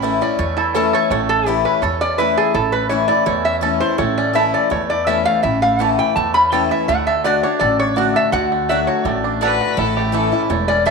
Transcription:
Already playing: upright bass A1, steel-string acoustic guitar A2, five-string banjo C#4 E4 A4, resonator guitar played with a steel bar E5
0.02 steel-string acoustic guitar E3 A3 C#4 E4, five-string banjo A3
0.21 five-string banjo C#4, steel-string acoustic guitar C#4 E4, resonator guitar played with a steel bar D5
0.39 steel-string acoustic guitar E2, upright bass E2, five-string banjo A3, resonator guitar played with a steel bar C#5
0.57 resonator guitar played with a steel bar E4, five-string banjo A4
0.75 steel-string acoustic guitar E3 A3 C#4 E4, five-string banjo C#4, resonator guitar played with a steel bar A4
0.93 five-string banjo A4, resonator guitar played with a steel bar C#5
1.10 upright bass A1, steel-string acoustic guitar A2, five-string banjo A3, resonator guitar played with a steel bar C#5
1.29 resonator guitar played with a steel bar A4, five-string banjo A4
1.46 steel-string acoustic guitar E3 A3 C#4 E4, five-string banjo E4, resonator guitar played with a steel bar G4
1.65 five-string banjo C#4, resonator guitar played with a steel bar B4
1.82 upright bass E2, steel-string acoustic guitar E2, five-string banjo A4, resonator guitar played with a steel bar C#5
2.01 five-string banjo C#4, resonator guitar played with a steel bar D5
2.18 steel-string acoustic guitar E3 A3 C#4 E4, five-string banjo E4, resonator guitar played with a steel bar B4
2.37 resonator guitar played with a steel bar G#4, five-string banjo A4
2.54 upright bass A1, steel-string acoustic guitar A2, five-string banjo E4, resonator guitar played with a steel bar A4
2.72 five-string banjo A3, resonator guitar played with a steel bar B4
2.89 five-string banjo E3, steel-string acoustic guitar E3 A3 C#4 E4, resonator guitar played with a steel bar C#5
3.08 five-string banjo E4, resonator guitar played with a steel bar D5
3.26 steel-string acoustic guitar E2, upright bass E2, five-string banjo A3, resonator guitar played with a steel bar C#5
3.45 five-string banjo C#4, resonator guitar played with a steel bar E5
3.61 steel-string acoustic guitar E3 A3 C#4 E4, five-string banjo A4
3.80 steel-string acoustic guitar C#4 E4, five-string banjo E4, resonator guitar played with a steel bar C5
3.98 upright bass A1, steel-string acoustic guitar A2, five-string banjo A3, resonator guitar played with a steel bar C#5
4.18 five-string banjo C#4, resonator guitar played with a steel bar D5
4.33 steel-string acoustic guitar E3 A3 C#4 E4, mandolin A3 E4 C#5 A5, five-string banjo E4, resonator guitar played with a steel bar E5
4.54 five-string banjo A4, resonator guitar played with a steel bar D5
4.70 steel-string acoustic guitar E2, upright bass E2, five-string banjo A3, resonator guitar played with a steel bar C#5
4.90 five-string banjo E4, resonator guitar played with a steel bar D5
5.07 steel-string acoustic guitar E3 A3 C#4 E4, mandolin A3 E4 C#5 A5, five-string banjo C#4, resonator guitar played with a steel bar E5
5.25 five-string banjo A3, resonator guitar played with a steel bar F5
5.43 upright bass A1, steel-string acoustic guitar A2, five-string banjo E4, resonator guitar played with a steel bar E5
5.62 five-string banjo A3, resonator guitar played with a steel bar F5
5.79 steel-string acoustic guitar E3 A3 C#4 E4, five-string banjo E3, mandolin A3 E4 C#5 A5, resonator guitar played with a steel bar F#5
5.99 five-string banjo E4, resonator guitar played with a steel bar G5
6.16 upright bass E2, steel-string acoustic guitar E2, five-string banjo A3, resonator guitar played with a steel bar A5
6.34 five-string banjo C#4, resonator guitar played with a steel bar B5
6.52 steel-string acoustic guitar E3 A3 C#4 E4, mandolin A3 E4 C#5 A5, five-string banjo A4, resonator guitar played with a steel bar G5
6.71 five-string banjo E4, resonator guitar played with a steel bar E5
6.88 upright bass D2, steel-string acoustic guitar D3, five-string banjo A3, resonator guitar played with a steel bar F#5
7.07 five-string banjo A4, resonator guitar played with a steel bar E5
7.24 steel-string acoustic guitar D3 A3 D4 F#4, mandolin A3 F#4 D5 F#5, five-string banjo F#4, resonator guitar played with a steel bar D5
7.43 five-string banjo D4, steel-string acoustic guitar D4 F#4, resonator guitar played with a steel bar C#5
7.59 upright bass A1, steel-string acoustic guitar A2, five-string banjo A4, resonator guitar played with a steel bar D5
7.79 five-string banjo D4, resonator guitar played with a steel bar C#5
7.96 steel-string acoustic guitar D3 A3 D4 F#4, mandolin A3 F#4 D5 F#5, five-string banjo F#4, resonator guitar played with a steel bar D5
8.16 five-string banjo A4, resonator guitar played with a steel bar E5
8.32 upright bass D2, steel-string acoustic guitar D3, five-string banjo F#4, resonator guitar played with a steel bar F#5
8.52 five-string banjo A3
8.69 steel-string acoustic guitar D3 A3 D4 F#4, five-string banjo F#3, mandolin A3 F#4 D5 F#5, resonator guitar played with a steel bar E5
8.87 five-string banjo F#4, resonator guitar played with a steel bar C#5
9.05 upright bass A1, steel-string acoustic guitar A2, five-string banjo A3, resonator guitar played with a steel bar D5
9.24 five-string banjo D4
9.41 steel-string acoustic guitar D3 A3 D4 F#4, mandolin A3 F#4 D5 F#5, five-string banjo A4, fiddle B4
9.61 five-string banjo F#4
9.77 upright bass A1, steel-string acoustic guitar A2, five-string banjo E4, fiddle A4
9.96 five-string banjo A3, fiddle G4
10.12 steel-string acoustic guitar E3 A3 C#4 E4, five-string banjo E3, mandolin A3 E4 C#5 A5, fiddle A4
10.32 steel-string acoustic guitar C#4 E4, five-string banjo E4
10.50 upright bass E1, steel-string acoustic guitar E2, five-string banjo A3, resonator guitar played with a steel bar C#5
10.68 five-string banjo C#4, resonator guitar played with a steel bar D5
10.86 steel-string acoustic guitar E3 A3 C#4, mandolin A3 E4 C#5 A5, five-string banjo A4, resonator guitar played with a steel bar E5

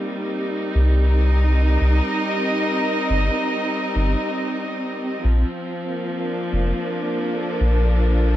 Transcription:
Already playing: string section G3 A#3 C4 D#4
0.75 sub bass C2
1.02 string section A#4
1.23 string section D#5
1.81 sub bass C2
3.10 sub bass G1
3.96 sub bass G1
5.23 sub bass A#1, string section F3
5.91 string section A#3
6.23 string section D4
6.53 sub bass F1
7.34 string section A4
7.61 sub bass A#1
8.33 string section D5

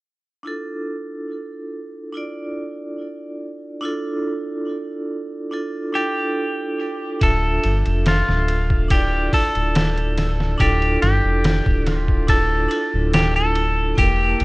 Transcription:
0.43 vibraphone D4 E4 F4
0.47 vibraphone A4
2.13 vibraphone D4 E4 F4
2.17 vibraphone D5
3.81 vibraphone D4 E4 F4
3.85 vibraphone A4
5.51 vibraphone D4 E4 F4 A4
5.92 vibraphone D4 E4 F4, clean electric guitar G4
5.97 vibraphone A4
7.19 analog synth bass D1, vibraphone D4 F4 E5, clean electric guitar A4, kick, ride
7.24 vibraphone A4
7.64 analog synth bass G1, ride
7.86 analog synth bass F1, ride
8.06 clean electric guitar F4, snare, ride
8.29 analog synth bass D1, snare
8.48 ride
8.70 kick
8.88 vibraphone D4 E4 F4, clean electric guitar G4, kick, ride
8.93 vibraphone D5
9.33 clean electric guitar A4, kick, open hi-hat
9.55 analog synth bass D1, ride
9.75 snare, ride
9.98 ride
10.18 snare, ride
10.40 snare
10.58 analog synth bass D1, vibraphone D4 E4 F4, clean electric guitar G4, kick, ride
10.62 vibraphone A4
10.82 ride
11.02 analog synth bass G1, clean electric guitar G4, snare, ride
11.25 analog synth bass F1
11.44 snare, ride
11.66 analog synth bass D1, kick
11.87 snare, ride
11.91 clean electric guitar F4
12.08 kick
12.27 vibraphone D4 E4 F4 A4, clean electric guitar A4, kick, ride
12.68 vibraphone D4 E4 F4, ride
12.73 vibraphone A4
12.94 analog synth bass D1
13.13 clean electric guitar G4, snare, ride
13.36 clean electric guitar A4
13.55 ride
13.95 analog synth bass E1, vibraphone A#3 E4 G4, clean electric guitar G4, kick, ride
14.00 vibraphone A#4
14.40 analog synth bass A1, ride

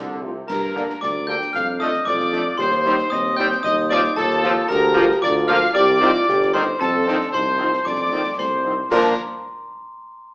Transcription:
Already playing: tuba C2, trombone section D3, euphonium F4, woodwind section A4, glockenspiel A5, piccolo A5
0.23 trombone section C3, french horn section A3 C4 F4
0.47 tuba G2, euphonium G4, woodwind section A#4, trumpet section A#4, glockenspiel A#5, piccolo A#5, concert bass drum, snare, crash
0.75 trombone section D3 A#3, french horn section G3 A#3 D4, euphonium D4, snare
0.90 snare
1.01 tuba D2, trumpet section D5, woodwind section D5, glockenspiel D6, piccolo D6, concert bass drum, snare
1.27 trombone section D3 A#3, french horn section G3 A#3 D4, trumpet section G5, woodwind section G5, glockenspiel G6, piccolo G6
1.41 snare
1.53 tuba F2, woodwind section F5, trumpet section F5, glockenspiel F6, piccolo F6, concert bass drum, snare
1.80 trombone section F3 A3, french horn section A3 D4, trumpet section D#5, woodwind section D#5, glockenspiel D#6, piccolo D#6, snare
1.93 snare
2.05 tuba F2, euphonium F4, trumpet section D5, woodwind section D5, glockenspiel D6, piccolo D6, concert bass drum, snare
2.20 snare
2.32 trombone section F3 A3, french horn section A3 D4, snare
2.58 tuba D#2, euphonium G4, trumpet section C5, woodwind section C5, glockenspiel C6, piccolo C6, concert bass drum, snare, crash
2.85 french horn section G3 C4 D#4, trombone section G3 C4, euphonium D#4, snare
2.98 snare
3.10 tuba D#2, euphonium C4, trumpet section D#5, woodwind section D#5, glockenspiel D#6, piccolo D#6, concert bass drum, snare
3.36 french horn section G3 C4 D#4, trombone section G3 C4, trumpet section G5, woodwind section G5, glockenspiel G6, piccolo G6
3.52 snare
3.63 tuba D#2, euphonium D#4, woodwind section D#5, trumpet section D#5, glockenspiel D#6, piccolo D#6, concert bass drum, snare
3.90 french horn section F3 C4 F4, trombone section F3 C4, trumpet section D5, woodwind section D5, piccolo D6, glockenspiel D6, snare
4.04 snare
4.16 tuba D#2, euphonium F4, woodwind section A4, trumpet section A4, glockenspiel A5, piccolo A5, concert bass drum, snare
4.31 snare
4.43 french horn section F3 C4 F4, trombone section F3 C4, snare
4.68 tuba D2, euphonium G4, woodwind section A#4, trumpet section A#4, glockenspiel A#5, piccolo A#5, concert bass drum, snare, crash
4.94 trombone section F3 A#3, french horn section F3 A#3 F4, snare
5.11 snare
5.21 tuba D2, euphonium F4, trumpet section D5, woodwind section D5, glockenspiel D6, piccolo D6, concert bass drum, snare
5.48 trombone section F3 A#3, french horn section F3 A#3 F4, trumpet section F5, woodwind section F5, glockenspiel F6, piccolo F6
5.63 snare
5.74 tuba C2, euphonium G4, woodwind section D5, trumpet section D5, glockenspiel D6, piccolo D6, concert bass drum, snare
6.01 trombone section D#3 C4, french horn section G3 C4 D#4, euphonium F4, snare
6.16 snare
6.28 tuba G1, euphonium G4, concert bass drum, snare
6.42 snare
6.53 trombone section D#3 C4, french horn section G3 C4 D#4, euphonium D#4, trumpet section C5, woodwind section C5, glockenspiel C6, piccolo C6, snare
6.80 tuba F2, euphonium C4, trumpet section A4, woodwind section A4, glockenspiel A5, piccolo A5, concert bass drum, snare, crash
7.06 trombone section D#3 C4, french horn section F3 C4 D#4, euphonium D4, snare
7.21 snare
7.32 tuba C2, euphonium D#4, trumpet section C5, woodwind section C5, piccolo C6, glockenspiel C6, concert bass drum, snare
7.58 trombone section D#3 C4, french horn section F3 C4 D#4, euphonium F4
7.74 snare
7.85 tuba F2, euphonium D4, trumpet section D5, woodwind section D5, glockenspiel D6, piccolo D6, concert bass drum, snare
8.12 trombone section D#3 C4, french horn section F3 C4 D#4, euphonium C4
8.38 tuba C2, euphonium A3, trumpet section C5, woodwind section C5, piccolo C6, glockenspiel C6, concert bass drum, snare
8.64 trombone section D#3 C4, french horn section F3 C4 D#4
8.90 tuba A#2, french horn section F3 A#3 D4, trombone section F3 D4, trumpet section A#4, woodwind section A#4, piccolo A#5, glockenspiel A#5, concert bass drum, snare, crash

